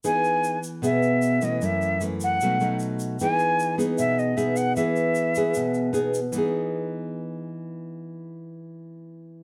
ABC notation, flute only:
X:1
M:4/4
L:1/8
Q:1/4=152
K:E
V:1 name="Flute"
g3 z e3 d | e2 z f3 z2 | g3 z e d e f | e6 z2 |
z8 | z8 |]